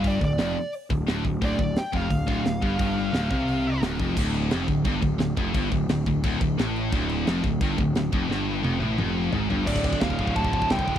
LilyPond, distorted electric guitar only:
\new Staff \with { instrumentName = "Distorted electric guitar" } { \clef bass \time 4/4 \key d \minor \tempo 4 = 174 g,8 d,8 f,8 r4 d,8 d,8 d,8 | d,8 d,8 r8 f,8 d,8 d,8 d,8 g,8 | g,4 d,8 c4. d,8 f,8 | d,4 f,8 d,8 g,8 d,8 d,8 f,8 |
g,8 d,8 d,8 d,8 d,8 d,8 a,4 | d,4 f,8 d,8 g,8 d,8 d,8 f,8 | g,4 f,8 a,8 f,4 gis,8 g,8 | <d, a, d>4 <d, a, d>8 <d, a, d>8 <d, a, d>4 <d, a, d>8 <d, a, d>8 | }